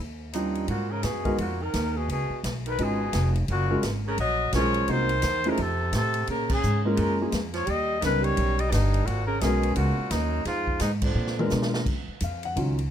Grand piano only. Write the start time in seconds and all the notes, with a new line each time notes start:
0.35 G3 C#4 D#4 F4
1.25 G#3 B3 D#4 F#4 A#4
2.79 G#3 C#4 D#4 F4 B4
3.71 G#3 C#4 F4 F#4 A#4
4.55 G#3 C#4 F4 G#4 A#4
4.88 A#3 C4 D#4 F#4 C5
5.46 A3 C#4 D#4 F4 C5
6.85 G#3 A#3 C#4 F4 A#4
7.22 G#3 A#3 C#4 F4 G#4
8.05 G3 B3 C#4 D#4 A#4
9.44 G#3 B3 C#4 F#4 A#4
11.39 G#3 B3 D4 F4 A#4
12.24 F5
12.45 F#5
12.56 D#3 F#3 C#4 F4